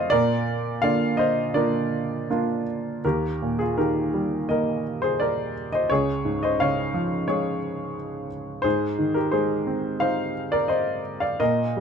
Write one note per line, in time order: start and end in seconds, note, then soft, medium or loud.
0.00 0.13 F3 soft
0.00 0.13 A3 soft
0.00 0.14 C4 soft
0.00 0.14 F4 medium
0.00 0.12 A#4 medium
0.00 0.14 C5 medium
0.00 0.10 D5 medium
0.00 0.14 D#5 medium
0.00 0.14 F5 loud
0.10 3.01 A#2 medium
0.10 0.79 A#4 medium
0.10 0.82 D5 medium
0.82 1.53 D3 soft
0.82 1.53 A#3 soft
0.82 1.53 F4 soft
0.82 1.17 D5 medium
0.82 1.19 F5 medium
1.17 1.53 C5 medium
1.17 1.52 D#5 medium
1.54 2.27 A#3 soft
1.54 2.27 D4 soft
1.54 2.28 F4 soft
1.54 2.64 A#4 soft
1.54 2.63 D5 medium
2.30 3.02 A#3 soft
2.30 3.02 D4 soft
2.30 3.03 F4 soft
3.05 5.86 D#2 soft
3.05 3.56 G4 soft
3.05 3.60 A#4 medium
3.42 4.81 A#2 soft
3.59 3.77 F4 soft
3.59 3.77 G#4 medium
3.78 5.16 D#3 soft
3.78 4.46 G4 soft
3.78 4.49 A#4 medium
4.14 5.51 G3 soft
4.49 5.86 A#3 soft
4.49 4.99 A#4 soft
4.49 4.98 D#5 medium
5.02 5.19 G#4 soft
5.02 5.20 C5 medium
5.20 5.70 A#4 soft
5.20 5.69 D5 medium
5.72 5.90 C5 soft
5.72 5.91 D#5 medium
5.90 8.61 C#2 soft
5.90 6.40 G#4 medium
5.90 6.44 C#5 medium
6.25 7.59 G#2 soft
6.43 6.60 C5 medium
6.43 6.61 D#5 medium
6.60 7.93 C#3 soft
6.60 7.25 C#5 medium
6.60 7.25 F5 medium
6.94 8.27 F3 soft
7.28 8.61 G#3 soft
7.28 8.28 G#4 soft
7.28 8.27 C#5 medium
8.62 11.36 G#2 soft
8.62 9.12 G#4 medium
8.62 9.16 C5 medium
8.99 10.31 D#3 soft
9.14 9.32 G4 soft
9.14 9.31 A#4 medium
9.32 10.66 G#3 soft
9.32 9.97 G#4 soft
9.32 9.96 C5 medium
9.67 11.00 C4 soft
10.00 11.36 D#4 soft
10.00 10.49 C5 medium
10.00 10.53 F5 medium
10.52 10.68 A#4 medium
10.52 10.68 D5 medium
10.68 11.18 C5 medium
10.68 11.23 D#5 medium
11.20 11.38 D5 soft
11.20 11.40 F5 medium
11.40 11.80 A#2 soft
11.40 11.80 A#4 medium
11.40 11.80 D#5 medium
11.77 11.80 G3 soft